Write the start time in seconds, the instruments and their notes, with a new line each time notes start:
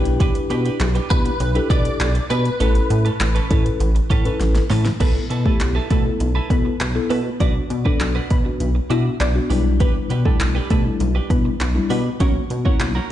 Already playing: analog synth bass B1, tine electric piano D4 E4 G4 B4 G5
0.05 muted clean electric guitar stroke, closed hi-hat
0.20 clean electric guitar D4 G4 B4, kick, closed hi-hat
0.35 muted clean electric guitar stroke, closed hi-hat
0.50 analog synth bass B2, clean electric guitar D4 G4 B4, closed hi-hat
0.65 clean electric guitar D4 G4 B4, closed hi-hat
0.80 analog synth bass B1, muted clean electric guitar stroke, clap, closed hi-hat
0.95 clean electric guitar D4 G4 B4, closed hi-hat
1.10 analog synth bass B2, tine electric piano D4 E4 G4 B4, clean electric guitar B4, kick, closed hi-hat
1.25 muted clean electric guitar stroke, closed hi-hat
1.40 analog synth bass B1, muted clean electric guitar stroke, closed hi-hat
1.55 tine electric piano D4 E4 G4 A4, clean electric guitar D4 G4 B4, closed hi-hat
1.70 analog synth bass B2, clean electric guitar D4 G4 B4 D5, kick, closed hi-hat
1.85 muted clean electric guitar stroke, closed hi-hat
2.00 analog synth bass B1, clap, closed hi-hat
2.15 muted clean electric guitar stroke, closed hi-hat
2.30 analog synth bass B2, clean electric guitar D4 G4 B4, closed hi-hat
2.45 muted clean electric guitar stroke, closed hi-hat
2.60 analog synth bass A1, clean electric guitar C#4 A4 B4, tine electric piano C#4 E4 A4 B4, closed hi-hat
2.75 muted clean electric guitar stroke, closed hi-hat
2.90 analog synth bass A2, muted clean electric guitar stroke, closed hi-hat
3.05 clean electric guitar C#4 A4 B4, closed hi-hat
3.20 analog synth bass A1, muted clean electric guitar stroke, clap, closed hi-hat
3.35 clean electric guitar C#4 A4 B4, closed hi-hat
3.50 analog synth bass A2, clean electric guitar C#4 A4 B4, tine electric piano C#4 E4 A4 B4, kick, closed hi-hat
3.65 muted clean electric guitar stroke, closed hi-hat
3.80 analog synth bass A1, muted clean electric guitar stroke, closed hi-hat
3.95 muted clean electric guitar stroke, closed hi-hat
4.10 analog synth bass A2, clean electric guitar C#4 A4 B4, kick, closed hi-hat
4.25 tine electric piano C#4 E4 A4 B4, clean electric guitar C#4 A4 B4, closed hi-hat
4.40 analog synth bass A1, muted clean electric guitar stroke, snare, closed hi-hat
4.55 muted clean electric guitar stroke, snare, closed hi-hat
4.70 analog synth bass A2, clean electric guitar C#4 A4 B4, snare, open hi-hat
4.85 muted clean electric guitar stroke, snare, closed hi-hat
5.00 analog synth bass B1, tine electric piano B3 E4 A4, synth pluck B3 B4, clean electric guitar E4 A4 B4, kick, closed hi-hat, crash
5.15 muted clean electric guitar stroke
5.30 analog synth bass B2, clean electric guitar E4 A4 B4, closed hi-hat
5.45 synth pluck A3 A4, tine electric piano B3 E4 G4, clean electric guitar E4 A4 B4, kick
5.60 analog synth bass B1, muted clean electric guitar stroke, clap, closed hi-hat
5.75 clean electric guitar E4 A4 B4
5.90 analog synth bass B2, synth pluck A3 A4, clean electric guitar E4 A4 B4, kick, closed hi-hat
6.05 tine electric piano B3 E4 A4, muted clean electric guitar stroke
6.20 analog synth bass B1, muted clean electric guitar stroke, closed hi-hat
6.35 clean electric guitar E4 A4 B4
6.50 analog synth bass B2, tine electric piano B3 E4 A4, synth pluck B3 B4, muted clean electric guitar stroke, kick, closed hi-hat
6.65 muted clean electric guitar stroke
6.80 analog synth bass B1, muted clean electric guitar stroke, clap, closed hi-hat
6.95 tine electric piano B3 E4 A4, muted clean electric guitar stroke
7.10 analog synth bass B2, synth pluck B3 B4, clean electric guitar E4 A4 B4, open hi-hat
7.25 muted clean electric guitar stroke
7.40 analog synth bass B1, tine electric piano B3 D4 F#4, clean electric guitar D4 F#4 B4, synth pluck D4 D5, kick, closed hi-hat
7.55 muted clean electric guitar stroke
7.70 analog synth bass B2, muted clean electric guitar stroke, closed hi-hat
7.85 tine electric piano B3 D4 A4, synth pluck D4 D5, clean electric guitar D4 F#4 B4, kick
8.00 analog synth bass B1, muted clean electric guitar stroke, clap, closed hi-hat
8.15 clean electric guitar D4 F#4 B4
8.30 analog synth bass B2, synth pluck B3 B4, muted clean electric guitar stroke, kick, closed hi-hat
8.45 tine electric piano B3 D4 F#4, muted clean electric guitar stroke
8.60 analog synth bass B1, closed hi-hat
8.75 muted clean electric guitar stroke
8.90 analog synth bass B2, tine electric piano B3 D4 F#4, clean electric guitar D4 F#4 B4, synth pluck E4 E5, closed hi-hat
9.05 muted clean electric guitar stroke
9.20 analog synth bass B1, synth pluck D4 D5, muted clean electric guitar stroke, clap, closed hi-hat
9.35 tine electric piano B3 D4 F#4, muted clean electric guitar stroke
9.50 analog synth bass B1, tine electric piano G3 D4 E4, clean electric guitar D4 G4 B4, open hi-hat
9.65 muted clean electric guitar stroke
9.80 synth pluck B3 B4, clean electric guitar D4 G4 B4, kick, closed hi-hat
9.95 muted clean electric guitar stroke
10.10 analog synth bass B2, clean electric guitar D4 G4 B4, closed hi-hat
10.25 tine electric piano G3 D4 E4, synth pluck A3 A4, clean electric guitar D4 G4 B4, kick
10.40 analog synth bass B1, muted clean electric guitar stroke, clap, closed hi-hat
10.55 clean electric guitar D4 G4 B4
10.70 analog synth bass B2, synth pluck A3 A4, clean electric guitar D4 G4 B4, kick, closed hi-hat
10.85 tine electric piano G3 D4 E4, muted clean electric guitar stroke
11.00 analog synth bass B1, muted clean electric guitar stroke, closed hi-hat
11.15 clean electric guitar D4 G4 B4
11.30 analog synth bass B2, tine electric piano G3 D4 E4, synth pluck B3 B4, muted clean electric guitar stroke, kick, closed hi-hat
11.45 muted clean electric guitar stroke
11.60 analog synth bass B1, muted clean electric guitar stroke, clap, closed hi-hat
11.75 tine electric piano G3 D4 E4, muted clean electric guitar stroke
11.90 analog synth bass B2, synth pluck B3 B4, clean electric guitar D4 G4 B4, open hi-hat
12.05 muted clean electric guitar stroke
12.20 analog synth bass B1, tine electric piano A#3 C#4 F#4, clean electric guitar C#4 F#4 A#4, synth pluck C#4 C#5, kick, closed hi-hat
12.35 muted clean electric guitar stroke
12.50 analog synth bass B2, muted clean electric guitar stroke, closed hi-hat
12.65 tine electric piano A#3 C#4 E4, synth pluck C#4 C#5, clean electric guitar C#4 F#4 A#4, kick
12.80 analog synth bass B1, clap, closed hi-hat
12.95 clean electric guitar C#4 F#4 A#4